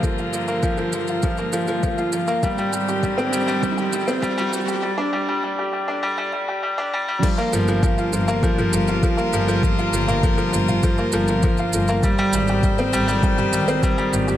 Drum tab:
CC |----------------|----------------|----------------|x---------------|
SH |xxxxxxxxxxxxxxxx|xxxxxxxxxxxxxxxx|----------------|xxxxxxxxxxxxxxxx|
T2 |----------------|----------------|----------------|---------o------|
BD |o---o---o---o---|o---o---o---o---|----------------|o---o---o---o---|

CC |----------------|----------------|
SH |xxxxxxxxxxxxxxxx|xxxxxxxxxxxxxxxx|
T2 |---o---o--------|---------o------|
BD |o---o---o---o---|o---o---o---o---|